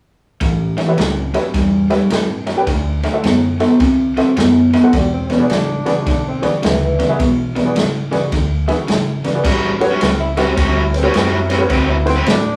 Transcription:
0.41 A1 A2 E3, kick, snare, ride
0.77 A2 E3 C#5 E5, snare, ride
0.88 G4 B4 C#5 E5
0.98 C#2 A2 F#3, snare, ride
1.34 A2 F#3 G4 B4 C#5 E5, snare, ride
1.54 E2 A2 G3, kick, snare, ride
1.90 A2 G3 G4 B4 C#5 E5, snare, ride
2.10 G2 A2 F#3, snare, ride
2.46 A2 F#3 C#5 E5, snare, ride
2.57 G4 B4 C#5 G5
2.67 D2 D3 A3, kick, snare, ride
3.03 D3 A3 C5 E5, snare, ride
3.13 F#4 A4 C5 E5
3.23 F#2 D3 B3, snare, ride
3.60 D3 B3 F#4 A4 C5 E5, snare, ride
3.80 C2 D3 C4, kick, snare, ride
4.17 D3 C4 F#4 A4 C5 E5, snare, ride
4.37 F#2 D3 B3, snare, ride
4.73 D3 B3 C5 E5, snare, ride
4.83 F#4 A4 C5 F#5
4.93 E1 E2 B2 G3, kick, snare, ride
5.13 C4
5.30 E2 B2 D4 B4 D5, snare, ride
5.39 F#4 G#4 B4 D5
5.50 G#1 E2 C#3, snare, ride
5.85 E2 C#3 F#4 G#4 B4 D5, snare, ride
6.06 B1 E2 D3 D4, kick, snare, ride
6.28 C4
6.42 E2 D3 F#4 G#4 B4 D5, snare, ride
6.47 G3
6.63 D2 E2 C#3 E3, snare, ride
6.84 E3
6.99 E2 C#3 B4 D5, snare, ride
7.09 F#4 G#4 B4 E5
7.19 B1 E2 B2, kick, snare, ride
7.55 E2 B2 B4 D5, snare, ride
7.65 F#4 G#4 B4 D5
7.75 G#1 E2 C#3, snare, ride
8.11 E2 C#3 F#4 G#4 B4 D5, snare, ride
8.32 D2 E2 D3, kick, snare, ride
8.67 E2 D3 F#4 G#4 B4 E5, snare, ride
8.88 G#1 E2 C#3, snare, ride
9.24 E2 C#3 B4 D5, snare, ride
9.35 F#4 G#4 B4 D5
9.44 A1 A2 G3 C#4 F#4, kick, snare, crash
9.80 F#4 G4 B4 C#5, snare, ride
9.91 A2 G3 C#4 F#4
10.01 C#2 C4, snare, ride
10.20 E4
10.37 A2 G3 C4 C#4 F#4 G4 B4 E5, snare, ride
10.56 D2 A2 G3 C4 C#4 F#4, kick, snare, ride
10.77 E4
10.93 C4 B4 C#5, snare, ride
11.03 A2 G3 C#4 F#4 G4 B4 C#5
11.13 F#2 A2 G3 C4 C#4 F#4, snare, ride
11.33 E4
11.49 A2 G3 C4 C#4 F#4 B4 C#5, snare, ride
11.58 F#4 G4 B4 C#5, muted overdriven electric guitar stroke
11.69 D2 D3 C4 F#4 B4, kick, snare, ride
11.90 E4
12.06 C4 E4 F#4 B4 C5, snare, ride
12.16 D3 C4 F#4 B4
12.26 A2 D4, snare, ride

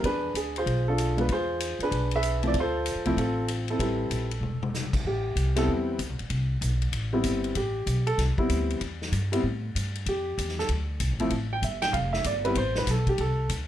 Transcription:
0.00 E2 A#4, kick, ride
0.05 D4 G#4 B4
0.34 D2 G#4, hi-hat pedal, ride
0.56 F4 G#4 C5, ride
0.66 B1, kick, ride
0.88 D4 F4 A4
0.98 hi-hat pedal, ride
1.17 G#3 B3 D4 F4 B4, ride
1.29 E2 G#4 C5, kick, ride
1.33 F4
1.60 hi-hat pedal, ride
1.79 F2 B4, ride
1.83 D4 G#4
1.91 B1, kick, ride
2.11 ride
2.16 G#4 B4 E5
2.23 hi-hat pedal, ride
2.43 F3 A3 C4 E4, ride
2.47 D5
2.54 D2, kick, ride
2.59 F4 A4 C5
2.86 hi-hat pedal, ride
2.95 F2
3.05 C2 F3 A3 C4 E4, ride
3.17 A1 C4 F4 A4, kick, ride
3.48 hi-hat pedal, ride
3.68 C4 E4 A4, ride
3.79 A1 G3 C4 E4 B4, kick, ride
4.10 A#1, hi-hat pedal, ride
4.31 ride
4.41 E1, mid tom
4.63 mid tom
4.74 snare, hi-hat pedal
4.93 muted upright bass stroke, kick, crash
5.05 A1 G4, kick
5.35 C2, kick, hi-hat pedal, ride
5.56 G3 B3 C4 E4 A4, snare, ride
5.67 E2, kick
5.98 D2, kick, hi-hat pedal, ride
6.09 C2
6.19 A1, ride
6.30 C2, kick, ride
6.61 B1, kick, hi-hat pedal, ride
6.82 ride
6.92 A1, kick, ride
7.13 G3 B3 C4 E4
7.24 G1, kick, hi-hat pedal, ride
7.44 ride
7.55 A1 G4, kick, ride
7.86 B1, kick, hi-hat pedal, ride
8.07 A4, ride
8.18 C2, kick, snare, ride
8.38 G3 B3 C4 E4, muted upright bass stroke, kick
8.49 D2, kick, hi-hat pedal, ride
8.70 ride
8.81 E2, kick, ride
9.02 snare
9.12 G2, kick, hi-hat pedal, ride
9.32 G3 B3 C4 E4, ride
9.43 A2, kick
9.75 G2, kick, hi-hat pedal, ride
9.95 ride
10.06 F2 G4, kick, ride
10.38 E2, kick, hi-hat pedal, ride
10.49 snare
10.59 A4, snare
10.69 D2, kick, ride
11.00 C2, kick, hi-hat pedal, ride
11.11 A1
11.19 F1 F3 A3 C4 E4, ride
11.30 A1, kick, ride
11.53 G5
11.62 G1 E5, kick, hi-hat pedal, ride
11.82 G5, snare, ride
11.93 F1 F5, kick, ride
12.13 E5, snare
12.24 G1 D5, kick, hi-hat pedal, ride
12.45 G3 B3 C4 E4 B4, ride
12.55 A1 C5, kick, ride
12.75 B4, snare
12.87 B1, kick, snare, hi-hat pedal, ride
12.91 A4
13.07 G4, kick, ride
13.18 C2 A4, kick, ride
13.49 D2, kick, hi-hat pedal, ride

